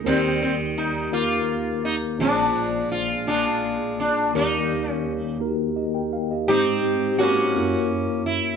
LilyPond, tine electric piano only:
<<
  \new Staff \with { instrumentName = "Tine electric piano" } { \time 6/8 \key ees \mixolydian \tempo 4. = 56 << { r2. | r2. | r2 <g' ees''>16 <bes' g''>16 f''16 <g' ees''>16~ | <g' ees''>16 r2 r8. | } \\ { <bes ees' ges' g' bes'>4 r8 <bes ees' g' bes'>4 r8 | <bes d' f' aes'>4 r8 <bes d' f' aes'>4 r8 | <bes ees' g' bes'>4 r8 <bes ees' ges' g' bes'>4 r8 | <aes c' ees' g' c''>4 r8 <bes des' fes' ges' a' bes'>4 r8 | } >> }
  \new Staff \with { instrumentName = "Tine electric piano" } { \clef bass \time 6/8 \key ees \mixolydian <ees, ees>2. | <bes,, bes,>2. | <ees, ees>2. | aes,4. ges,4. | }
>>